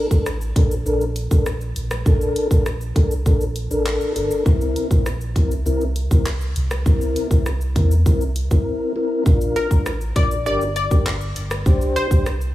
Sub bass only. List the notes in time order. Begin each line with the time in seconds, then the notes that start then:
0.11 A1
0.56 A#1
0.86 A#1
1.31 A#1
1.76 A#1
2.06 A#1
2.51 A#1
2.96 C2
3.26 A#1
3.71 A1
4.16 G1
4.46 C2
4.91 A#1
5.36 C2
5.66 C2
6.11 C2
6.56 C2
6.86 C2
7.31 C2
7.76 E2
8.06 C2
8.51 A1
9.26 A#1
9.71 A1
10.16 A#1
10.46 G1
10.91 G1
11.36 G1
11.66 C2
12.11 C2